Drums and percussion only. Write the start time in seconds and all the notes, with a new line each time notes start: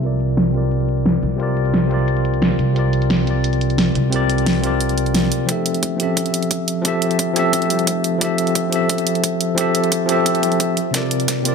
0.03 closed hi-hat
0.20 closed hi-hat
0.29 closed hi-hat
0.37 snare, closed hi-hat
0.54 closed hi-hat
0.71 closed hi-hat
0.80 closed hi-hat
0.89 closed hi-hat
0.97 closed hi-hat
1.06 snare, closed hi-hat
1.23 closed hi-hat
1.40 closed hi-hat
1.57 closed hi-hat
1.65 closed hi-hat
1.74 snare, closed hi-hat
1.91 closed hi-hat
2.08 closed hi-hat
2.17 closed hi-hat
2.25 closed hi-hat
2.34 closed hi-hat
2.42 snare, closed hi-hat
2.51 snare
2.59 closed hi-hat
2.76 closed hi-hat
2.93 closed hi-hat
3.02 closed hi-hat
3.10 snare, closed hi-hat
3.27 closed hi-hat
3.44 closed hi-hat
3.53 closed hi-hat
3.61 closed hi-hat
3.70 closed hi-hat
3.78 snare, closed hi-hat
3.95 closed hi-hat
4.12 closed hi-hat
4.30 closed hi-hat
4.38 closed hi-hat
4.46 snare, closed hi-hat
4.64 closed hi-hat
4.80 closed hi-hat
4.89 closed hi-hat
4.98 closed hi-hat
5.06 closed hi-hat
5.14 snare, closed hi-hat
5.23 snare
5.32 closed hi-hat
5.49 kick, closed hi-hat
5.66 closed hi-hat
5.74 closed hi-hat
5.83 kick, closed hi-hat
6.00 closed hi-hat
6.17 kick, closed hi-hat
6.26 closed hi-hat
6.34 closed hi-hat
6.43 closed hi-hat
6.51 kick, closed hi-hat
6.68 closed hi-hat
6.85 kick, closed hi-hat
7.02 closed hi-hat
7.11 closed hi-hat
7.19 kick, closed hi-hat
7.36 closed hi-hat
7.53 kick, closed hi-hat
7.62 closed hi-hat
7.70 closed hi-hat
7.79 closed hi-hat
7.87 kick, closed hi-hat
8.04 closed hi-hat
8.21 kick, closed hi-hat
8.38 closed hi-hat
8.47 closed hi-hat
8.55 kick, closed hi-hat
8.72 closed hi-hat
8.89 kick, closed hi-hat
8.98 closed hi-hat
9.07 closed hi-hat
9.15 closed hi-hat
9.24 kick, closed hi-hat
9.41 closed hi-hat
9.58 kick, closed hi-hat
9.75 closed hi-hat
9.84 closed hi-hat
9.92 kick, closed hi-hat
10.09 closed hi-hat
10.26 kick, closed hi-hat
10.35 closed hi-hat
10.43 closed hi-hat
10.52 closed hi-hat
10.60 kick, closed hi-hat
10.77 closed hi-hat
10.94 kick, snare, closed hi-hat
11.11 closed hi-hat
11.20 closed hi-hat
11.28 kick, snare, closed hi-hat
11.45 closed hi-hat